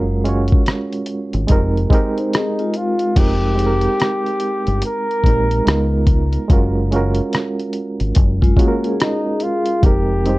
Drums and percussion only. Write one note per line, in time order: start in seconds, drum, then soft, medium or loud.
0.25 closed hi-hat medium
0.48 closed hi-hat medium
0.52 kick medium
0.66 cross-stick loud
0.66 closed hi-hat medium
0.93 closed hi-hat soft
1.06 closed hi-hat medium
1.33 closed hi-hat soft
1.48 kick medium
1.48 closed hi-hat medium
1.77 closed hi-hat soft
1.90 kick medium
1.90 closed hi-hat medium
2.18 closed hi-hat soft
2.33 cross-stick loud
2.33 closed hi-hat medium
2.59 closed hi-hat soft
2.74 closed hi-hat medium
2.99 closed hi-hat medium
3.16 kick loud
3.16 closed hi-hat medium
3.16 crash loud
3.59 closed hi-hat medium
3.81 closed hi-hat medium
4.00 cross-stick loud
4.00 closed hi-hat medium
4.26 closed hi-hat soft
4.40 closed hi-hat medium
4.67 closed hi-hat soft
4.82 closed hi-hat loud
5.11 closed hi-hat soft
5.24 kick medium
5.24 closed hi-hat medium
5.51 closed hi-hat soft
5.67 cross-stick loud
5.67 closed hi-hat medium
6.07 kick medium
6.07 closed hi-hat medium
6.33 closed hi-hat soft
6.50 kick loud
6.50 closed hi-hat medium
6.92 closed hi-hat medium
7.15 closed hi-hat medium
7.33 cross-stick loud
7.33 closed hi-hat medium
7.60 closed hi-hat soft
7.73 closed hi-hat medium
8.00 closed hi-hat soft
8.15 kick medium
8.15 closed hi-hat loud
8.42 kick medium
8.42 closed hi-hat soft
8.57 kick medium
8.57 closed hi-hat medium
8.84 closed hi-hat soft
9.00 cross-stick loud
9.00 closed hi-hat medium
9.40 closed hi-hat medium
9.65 closed hi-hat medium
9.83 kick loud
9.83 closed hi-hat medium
10.25 closed hi-hat medium